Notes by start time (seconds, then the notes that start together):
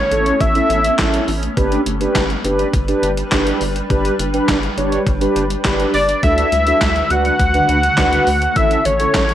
Already playing: A3 B3 C#4 C#5
0.11 A1 C#4 E4 A4, closed hi-hat
0.26 closed hi-hat
0.41 A1 E5, kick, closed hi-hat
0.55 C#4 E4 A4, closed hi-hat
0.70 A1, closed hi-hat
0.84 closed hi-hat
0.99 A1 C#4 E4 A4, kick, snare, clap, closed hi-hat
1.14 closed hi-hat
1.28 A1, open hi-hat
1.43 closed hi-hat
1.57 G1 G3 D4 G4 B4, kick, closed hi-hat
1.72 closed hi-hat
1.86 G1, closed hi-hat
2.01 D4 G4 B4, closed hi-hat
2.15 G1, kick, snare, clap, closed hi-hat
2.30 closed hi-hat
2.44 G1 D4 G4 B4, closed hi-hat
2.59 closed hi-hat
2.74 G1, kick, closed hi-hat
2.88 D4 G4 B4, closed hi-hat
3.03 G1, closed hi-hat
3.17 closed hi-hat
3.32 G1 D4 G4 B4, kick, snare, clap, closed hi-hat
3.47 closed hi-hat
3.61 G1, open hi-hat
3.76 closed hi-hat
3.90 G1 D4 G4 B4, kick, closed hi-hat
4.05 closed hi-hat
4.19 G1, closed hi-hat
4.34 D4 G4 B4, closed hi-hat
4.48 G1, kick, snare, clap, closed hi-hat
4.63 closed hi-hat
4.77 G1 D4 G4 C#5, closed hi-hat
4.92 closed hi-hat
5.07 G1, kick, closed hi-hat
5.21 D4 G4 B4, closed hi-hat
5.36 G1, closed hi-hat
5.50 closed hi-hat
5.65 G1 D4 G4 B4, kick, snare, clap, closed hi-hat
5.80 closed hi-hat
5.94 G1 D5, open hi-hat
6.09 closed hi-hat
6.23 D2 D3 A3 D4 F#4 A4 E5, kick, closed hi-hat
6.38 closed hi-hat
6.52 D2, closed hi-hat
6.67 D4 F#4 A4, closed hi-hat
6.81 D2, kick, snare, clap, closed hi-hat
6.96 closed hi-hat
7.10 D2 D4 F#4 B4 F#5, closed hi-hat
7.25 closed hi-hat
7.39 D2, kick, closed hi-hat
7.54 D4 F#4 B4, closed hi-hat
7.69 D2, closed hi-hat
7.83 closed hi-hat
7.98 D2 D4 F#4 B4, kick, snare, clap, closed hi-hat
8.13 closed hi-hat
8.27 D2, open hi-hat
8.42 closed hi-hat
8.56 A1 A3 B3 C#4 E4 A4 E5, kick, closed hi-hat
8.71 closed hi-hat
8.85 A1 C#5, closed hi-hat
9.00 C#4 E4 A4, closed hi-hat
9.14 A1, kick, snare, clap, closed hi-hat
9.29 closed hi-hat